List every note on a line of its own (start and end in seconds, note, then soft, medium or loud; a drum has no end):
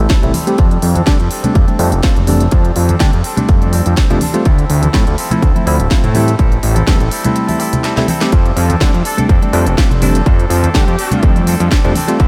0.00 0.20 G3 medium
0.00 0.20 A3 medium
0.00 0.20 C4 medium
0.00 0.21 E4 medium
0.09 0.23 G3 medium
0.09 0.23 C4 medium
0.09 0.22 E4 medium
0.09 0.21 A4 loud
0.09 kick loud
0.09 snare loud
0.09 closed hi-hat soft
0.22 0.32 A1 medium
0.22 0.31 G3 medium
0.22 0.31 A3 medium
0.22 0.31 C4 medium
0.22 0.33 C4 soft
0.22 0.32 E4 loud
0.22 0.34 E4 medium
0.22 0.34 A4 medium
0.22 closed hi-hat soft
0.22 tambourine soft
0.22 low conga medium
0.33 0.57 G3 medium
0.33 0.57 C4 medium
0.33 0.59 E4 medium
0.33 0.59 A4 medium
0.33 open hi-hat loud
0.33 tambourine medium
0.33 high conga medium
0.47 0.56 G3 medium
0.47 0.56 A3 medium
0.47 0.56 C4 medium
0.47 0.56 G4 loud
0.47 closed hi-hat soft
0.58 0.78 F2 medium
0.58 0.95 G3 medium
0.58 0.96 C4 medium
0.58 0.95 D4 medium
0.58 0.93 A4 medium
0.58 kick loud
0.58 closed hi-hat soft
0.71 closed hi-hat soft
0.82 1.02 F2 loud
0.82 open hi-hat loud
0.95 1.05 C4 medium
0.95 1.06 D4 medium
0.95 1.06 A4 medium
0.95 closed hi-hat soft
0.95 tambourine soft
0.95 high conga medium
1.06 1.17 D3 loud
1.06 1.29 G3 medium
1.06 1.16 G3 medium
1.06 1.17 A3 medium
1.06 1.30 C4 medium
1.06 1.17 C4 medium
1.06 1.17 D4 medium
1.06 1.32 A4 loud
1.06 kick loud
1.06 snare loud
1.06 closed hi-hat medium
1.20 1.29 F2 medium
1.20 closed hi-hat soft
1.30 1.44 G3 medium
1.30 1.44 C4 medium
1.30 1.43 D4 medium
1.30 1.41 A4 medium
1.30 open hi-hat loud
1.30 tambourine loud
1.43 1.58 G3 medium
1.43 1.58 A3 medium
1.43 1.58 C4 medium
1.43 1.54 C4 soft
1.43 1.58 D4 medium
1.43 1.55 D4 medium
1.43 1.55 A4 medium
1.43 closed hi-hat soft
1.43 tambourine soft
1.43 low conga medium
1.54 1.66 F2 medium
1.54 1.68 G3 medium
1.54 1.68 C4 medium
1.54 1.68 D4 medium
1.54 1.66 A4 medium
1.54 kick loud
1.54 closed hi-hat soft
1.67 1.76 G3 medium
1.67 1.76 A3 medium
1.67 1.76 C4 medium
1.67 1.79 C4 soft
1.67 1.77 D4 medium
1.67 1.79 D4 medium
1.67 1.79 A4 medium
1.67 closed hi-hat soft
1.67 tambourine soft
1.67 high conga medium
1.79 1.94 F2 loud
1.79 2.02 G3 medium
1.79 1.89 G3 medium
1.79 1.89 A3 medium
1.79 1.89 C4 medium
1.79 2.02 C4 medium
1.79 1.89 D4 loud
1.79 2.03 D4 medium
1.79 2.04 A4 medium
1.79 open hi-hat loud
1.79 tambourine medium
1.92 2.01 F1 loud
1.92 closed hi-hat soft
1.92 tambourine soft
2.03 2.13 G3 medium
2.03 2.16 G3 medium
2.03 2.13 A3 medium
2.03 2.13 C4 medium
2.03 2.17 C4 medium
2.03 2.16 D4 medium
2.03 2.13 F4 loud
2.03 2.14 A4 medium
2.03 kick loud
2.03 snare loud
2.03 closed hi-hat soft
2.16 2.48 F1 medium
2.16 2.26 C4 medium
2.16 2.27 D4 medium
2.16 2.27 A4 medium
2.16 closed hi-hat soft
2.16 tambourine soft
2.16 low conga medium
2.27 2.50 G3 medium
2.27 2.43 G3 medium
2.27 2.43 A3 medium
2.27 2.43 C4 medium
2.27 2.51 C4 medium
2.27 2.43 D4 loud
2.27 2.51 D4 medium
2.27 2.52 A4 medium
2.27 open hi-hat loud
2.27 tambourine medium
2.27 high conga loud
2.41 closed hi-hat medium
2.41 tambourine soft
2.51 2.71 F2 loud
2.51 2.89 G3 medium
2.51 2.89 C4 medium
2.51 2.89 D4 medium
2.51 2.87 A4 medium
2.51 kick loud
2.51 closed hi-hat soft
2.65 closed hi-hat soft
2.76 2.96 F2 loud
2.76 open hi-hat loud
2.76 tambourine medium
2.88 2.99 C4 soft
2.88 3.00 D4 medium
2.88 3.00 A4 medium
2.88 closed hi-hat medium
2.88 tambourine soft
2.88 high conga medium
3.00 3.11 D3 loud
3.00 3.23 G3 medium
3.00 3.10 G3 medium
3.00 3.10 A3 medium
3.00 3.10 C4 medium
3.00 3.24 C4 medium
3.00 3.25 D4 medium
3.00 3.10 G4 loud
3.00 3.25 A4 loud
3.00 kick loud
3.00 snare loud
3.00 closed hi-hat soft
3.13 3.22 F2 medium
3.13 closed hi-hat soft
3.24 3.37 G3 medium
3.24 3.38 C4 medium
3.24 3.37 D4 medium
3.24 3.35 A4 medium
3.24 open hi-hat loud
3.24 tambourine medium
3.37 4.07 G3 medium
3.37 4.07 A3 medium
3.37 4.07 C4 medium
3.37 3.63 C4 soft
3.37 4.07 D4 medium
3.37 3.62 D4 medium
3.37 3.60 A4 medium
3.37 closed hi-hat medium
3.37 tambourine soft
3.37 low conga medium
3.49 3.81 F2 medium
3.49 kick loud
3.49 closed hi-hat soft
3.61 3.72 C4 medium
3.61 3.73 D4 medium
3.61 3.73 A4 medium
3.61 closed hi-hat soft
3.61 tambourine soft
3.61 high conga medium
3.72 3.96 G3 medium
3.72 3.96 C4 medium
3.72 3.97 D4 medium
3.72 3.98 A4 medium
3.72 open hi-hat loud
3.72 tambourine loud
3.86 3.95 F2 medium
3.86 closed hi-hat medium
3.86 tambourine soft
3.97 4.10 G3 medium
3.97 4.10 C4 medium
3.97 4.10 D4 medium
3.97 4.08 A4 medium
3.97 kick loud
3.97 snare loud
3.97 closed hi-hat medium
4.09 4.19 F2 medium
4.09 4.18 G3 loud
4.09 4.19 A3 medium
4.09 4.19 C4 medium
4.09 4.20 C4 soft
4.09 4.19 D4 loud
4.09 4.21 D4 medium
4.09 4.21 A4 medium
4.09 closed hi-hat soft
4.09 tambourine soft
4.09 low conga medium
4.20 4.44 G3 medium
4.20 4.44 C4 medium
4.20 4.46 D4 medium
4.20 4.45 A4 medium
4.20 open hi-hat loud
4.20 tambourine loud
4.20 high conga medium
4.33 4.42 G3 medium
4.33 4.43 A3 medium
4.33 4.43 C4 medium
4.33 4.43 F4 loud
4.33 closed hi-hat medium
4.33 tambourine soft
4.45 4.65 D2 loud
4.45 4.82 F3 medium
4.45 4.83 C4 loud
4.45 4.82 E4 medium
4.45 4.80 A4 medium
4.45 kick loud
4.45 closed hi-hat medium
4.59 closed hi-hat soft
4.70 4.89 D2 loud
4.70 open hi-hat loud
4.70 tambourine medium
4.81 4.92 C4 soft
4.81 4.93 E4 medium
4.81 4.93 A4 medium
4.81 closed hi-hat medium
4.81 tambourine soft
4.81 high conga medium
4.93 5.04 A2 loud
4.93 5.16 F3 medium
4.93 5.03 F3 medium
4.93 5.03 A3 medium
4.93 5.04 C4 medium
4.93 5.17 C4 medium
4.93 5.04 E4 medium
4.93 5.18 E4 medium
4.93 5.19 A4 loud
4.93 kick loud
4.93 snare loud
4.93 closed hi-hat medium
5.07 5.16 D2 medium
5.07 closed hi-hat soft
5.17 5.31 F3 medium
5.17 5.31 C4 medium
5.17 5.31 E4 medium
5.17 5.29 A4 medium
5.17 open hi-hat loud
5.17 tambourine loud
5.30 5.45 F3 medium
5.30 5.45 A3 medium
5.30 5.45 C4 medium
5.30 5.41 C4 soft
5.30 5.45 E4 medium
5.30 5.42 E4 medium
5.30 5.42 A4 medium
5.30 closed hi-hat medium
5.30 tambourine soft
5.30 low conga medium
5.41 5.53 D2 medium
5.41 5.55 F3 medium
5.41 5.55 C4 medium
5.41 5.53 A4 medium
5.41 kick loud
5.41 closed hi-hat medium
5.54 5.64 F3 medium
5.54 5.64 A3 medium
5.54 5.64 C4 medium
5.54 5.65 C4 medium
5.54 5.66 E4 medium
5.54 5.64 E4 medium
5.54 5.66 A4 medium
5.54 closed hi-hat soft
5.54 tambourine soft
5.54 high conga medium
5.65 5.81 D2 loud
5.65 5.89 F3 medium
5.65 5.76 F3 loud
5.65 5.76 A3 medium
5.65 5.90 C4 medium
5.65 5.76 C4 medium
5.65 5.77 E4 loud
5.65 5.90 E4 medium
5.65 5.91 A4 medium
5.65 open hi-hat loud
5.65 tambourine medium
5.79 5.88 D1 loud
5.79 closed hi-hat medium
5.79 tambourine soft
5.90 6.03 F3 medium
5.90 6.01 F3 medium
5.90 6.01 A3 medium
5.90 6.04 C4 medium
5.90 6.01 C4 medium
5.90 6.03 E4 medium
5.90 6.01 F4 loud
5.90 6.02 A4 loud
5.90 kick loud
5.90 snare loud
5.90 closed hi-hat medium
6.03 6.35 A2 medium
6.03 6.14 C4 medium
6.03 6.15 E4 medium
6.03 6.15 A4 medium
6.03 closed hi-hat soft
6.03 tambourine soft
6.03 low conga loud
6.14 6.37 G3 medium
6.14 6.30 G3 medium
6.14 6.30 A3 medium
6.14 6.30 C4 medium
6.14 6.38 C4 medium
6.14 6.31 E4 loud
6.14 6.39 E4 medium
6.14 6.39 A4 medium
6.14 open hi-hat loud
6.14 tambourine loud
6.14 high conga medium
6.28 closed hi-hat medium
6.28 tambourine soft
6.38 6.58 A1 loud
6.38 6.76 G3 medium
6.38 6.76 C4 medium
6.38 6.75 E4 medium
6.38 6.74 A4 loud
6.38 kick loud
6.38 closed hi-hat medium
6.52 closed hi-hat soft
6.63 6.82 A1 loud
6.63 open hi-hat loud
6.63 tambourine medium
6.75 6.86 C4 medium
6.75 6.87 E4 medium
6.75 6.87 A4 medium
6.75 closed hi-hat medium
6.75 tambourine soft
6.75 high conga medium
6.86 6.98 E2 loud
6.86 7.09 G3 medium
6.86 6.97 G3 medium
6.86 6.97 A3 medium
6.86 7.10 C4 medium
6.86 6.97 C4 medium
6.86 6.98 A4 loud
6.86 7.12 A4 medium
6.86 kick loud
6.86 snare loud
6.86 closed hi-hat medium
7.00 7.09 A1 medium
7.00 closed hi-hat soft
7.10 7.24 G3 medium
7.10 7.25 C4 medium
7.10 7.24 E4 medium
7.10 7.22 A4 medium
7.10 open hi-hat loud
7.10 tambourine medium
7.23 7.94 G3 medium
7.23 7.94 A3 medium
7.23 7.94 C4 medium
7.23 7.49 C4 medium
7.23 7.48 E4 medium
7.23 7.95 E4 medium
7.23 7.46 A4 medium
7.23 closed hi-hat medium
7.23 tambourine soft
7.23 low conga medium
7.36 closed hi-hat medium
7.36 tambourine soft
7.47 7.59 C4 soft
7.47 7.60 E4 medium
7.47 7.59 A4 medium
7.47 open hi-hat medium
7.47 tambourine soft
7.47 high conga medium
7.59 7.82 G3 medium
7.59 7.83 C4 medium
7.59 7.83 E4 medium
7.59 7.84 A4 medium
7.59 open hi-hat medium
7.59 tambourine loud
7.73 closed hi-hat medium
7.73 tambourine soft
7.73 low conga medium
7.83 7.97 G3 medium
7.83 7.97 C4 medium
7.83 7.97 E4 medium
7.83 7.95 A4 medium
7.83 snare medium
7.83 closed hi-hat medium
7.96 8.05 G3 medium
7.96 8.06 A3 medium
7.96 8.06 C4 medium
7.96 8.07 C4 soft
7.96 8.06 E4 loud
7.96 8.08 E4 medium
7.96 8.08 A4 medium
7.96 snare medium
7.96 closed hi-hat soft
7.96 tambourine soft
7.96 low conga medium
8.07 8.31 G3 medium
8.07 8.31 C4 medium
8.07 8.33 E4 medium
8.07 8.33 A4 medium
8.07 open hi-hat loud
8.07 tambourine medium
8.07 high conga medium
8.21 8.30 G3 medium
8.21 8.30 A3 medium
8.21 8.30 C4 medium
8.21 8.30 G4 loud
8.21 snare medium
8.21 closed hi-hat medium
8.21 tambourine soft
8.32 8.52 F2 loud
8.32 8.69 G3 medium
8.32 8.69 D4 medium
8.32 8.67 A4 loud
8.32 kick loud
8.32 closed hi-hat medium
8.45 closed hi-hat soft
8.45 tambourine soft
8.56 8.76 F2 loud
8.56 open hi-hat loud
8.56 tambourine medium
8.68 8.80 C4 soft
8.68 8.80 D4 medium
8.68 8.80 A4 medium
8.68 closed hi-hat medium
8.68 tambourine soft
8.68 high conga medium
8.80 8.91 D3 loud
8.80 9.03 G3 medium
8.80 8.91 G3 medium
8.80 8.91 A3 medium
8.80 8.91 C4 medium
8.80 9.04 C4 medium
8.80 8.91 D4 loud
8.80 9.05 D4 loud
8.80 9.06 A4 medium
8.80 kick loud
8.80 snare loud
8.80 closed hi-hat medium
8.94 9.03 F2 medium
8.94 closed hi-hat soft
8.94 tambourine soft
9.04 9.18 G3 medium
9.04 9.18 C4 medium
9.04 9.18 D4 medium
9.04 9.22 A4 medium
9.04 9.16 A4 medium
9.04 open hi-hat loud
9.04 tambourine medium
9.17 9.32 G3 medium
9.17 9.32 A3 medium
9.17 9.32 C4 medium
9.17 9.28 C4 soft
9.17 9.32 D4 medium
9.17 9.29 D4 medium
9.17 9.29 A4 medium
9.17 closed hi-hat medium
9.17 tambourine soft
9.17 low conga medium
9.28 9.40 F2 medium
9.28 9.42 G3 medium
9.28 9.43 C4 medium
9.28 9.42 D4 medium
9.28 9.40 A4 medium
9.28 kick loud
9.28 closed hi-hat medium
9.28 tambourine medium
9.41 9.51 G3 medium
9.41 9.51 A3 medium
9.41 9.51 C4 medium
9.41 9.53 C4 medium
9.41 9.51 D4 medium
9.41 9.54 D4 medium
9.41 9.53 A4 medium
9.41 closed hi-hat soft
9.41 tambourine soft
9.41 high conga medium
9.53 9.68 F2 medium
9.53 9.76 G3 medium
9.53 9.63 G3 medium
9.53 9.63 A3 medium
9.53 9.63 C4 medium
9.53 9.77 C4 medium
9.53 9.63 D4 loud
9.53 9.78 D4 medium
9.53 9.78 A4 medium
9.53 open hi-hat loud
9.53 tambourine medium
9.66 9.75 F1 loud
9.66 closed hi-hat medium
9.66 tambourine soft
9.77 9.87 G3 medium
9.77 9.91 G3 medium
9.77 9.87 A3 medium
9.77 9.88 C4 medium
9.77 9.91 C4 medium
9.77 9.91 D4 medium
9.77 9.88 F4 medium
9.77 9.89 A4 medium
9.77 kick loud
9.77 snare loud
9.77 closed hi-hat medium
9.90 10.22 F1 medium
9.90 10.01 C4 medium
9.90 10.02 D4 medium
9.90 10.02 A4 medium
9.90 closed hi-hat soft
9.90 tambourine soft
9.90 low conga medium
10.01 10.24 G3 medium
10.01 10.17 G3 medium
10.01 10.17 A3 medium
10.01 10.17 C4 medium
10.01 10.25 C4 medium
10.01 10.18 D4 loud
10.01 10.26 D4 medium
10.01 10.27 A4 medium
10.01 open hi-hat loud
10.01 tambourine loud
10.01 high conga medium
10.15 closed hi-hat medium
10.15 tambourine soft
10.26 10.46 F2 loud
10.26 10.63 G3 medium
10.26 10.64 C4 medium
10.26 10.63 D4 medium
10.26 10.61 A4 medium
10.26 kick loud
10.26 closed hi-hat medium
10.26 tambourine medium
10.39 closed hi-hat soft
10.39 tambourine soft
10.50 10.69 F2 loud
10.50 open hi-hat loud
10.50 tambourine medium
10.63 10.74 C4 soft
10.63 10.74 D4 medium
10.63 10.74 A4 medium
10.63 closed hi-hat medium
10.63 tambourine soft
10.63 high conga medium
10.74 10.85 D3 loud
10.74 10.84 G3 medium
10.74 10.97 G3 medium
10.74 10.84 A3 medium
10.74 10.84 C4 medium
10.74 10.98 C4 medium
10.74 10.85 G4 loud
10.74 11.43 G4 medium
10.74 kick loud
10.74 snare loud
10.74 closed hi-hat medium
10.88 10.96 F2 medium
10.88 closed hi-hat soft
10.97 11.11 G3 medium
10.97 11.12 C4 medium
10.97 11.11 D4 medium
10.97 11.10 A4 medium
10.97 open hi-hat loud
10.97 tambourine medium
11.11 11.81 G3 medium
11.11 11.81 A3 medium
11.11 11.81 C4 medium
11.11 11.22 C4 soft
11.11 11.23 D4 medium
11.11 11.82 D4 medium
11.11 11.23 A4 medium
11.11 closed hi-hat medium
11.11 tambourine soft
11.11 low conga medium
11.22 11.56 F2 medium
11.22 11.36 G3 medium
11.22 11.36 C4 medium
11.22 11.36 D4 medium
11.22 11.34 A4 medium
11.22 kick loud
11.22 closed hi-hat medium
11.22 tambourine medium
11.35 11.46 C4 medium
11.35 11.47 D4 medium
11.35 11.47 A4 medium
11.35 closed hi-hat soft
11.35 tambourine soft
11.35 high conga medium
11.46 11.69 G3 medium
11.46 11.70 C4 medium
11.46 11.71 D4 medium
11.46 11.71 A4 medium
11.46 open hi-hat loud
11.46 tambourine loud
11.60 11.69 F2 medium
11.60 closed hi-hat medium
11.60 tambourine soft
11.71 11.84 G3 medium
11.71 11.84 C4 medium
11.71 11.84 D4 medium
11.71 11.82 A4 loud
11.71 kick loud
11.71 snare loud
11.71 closed hi-hat medium
11.83 11.93 F2 medium
11.83 11.93 G3 loud
11.83 11.93 A3 medium
11.83 11.93 C4 medium
11.83 11.95 C4 medium
11.83 11.93 D4 loud
11.83 11.96 D4 medium
11.83 11.95 A4 medium
11.83 closed hi-hat soft
11.83 tambourine soft
11.83 low conga medium
11.95 12.19 G3 medium
11.95 12.19 C4 medium
11.95 12.20 D4 medium
11.95 12.20 A4 medium
11.95 open hi-hat loud
11.95 tambourine loud
11.95 high conga loud
12.08 12.17 G3 medium
12.08 12.17 A3 medium
12.08 12.17 C4 medium
12.08 12.17 F4 loud
12.08 closed hi-hat medium
12.08 tambourine soft
12.19 12.28 D2 loud
12.19 12.28 F3 medium
12.19 12.28 C4 medium
12.19 12.28 E4 medium
12.19 12.28 A4 medium
12.19 kick loud
12.19 closed hi-hat soft
12.19 tambourine soft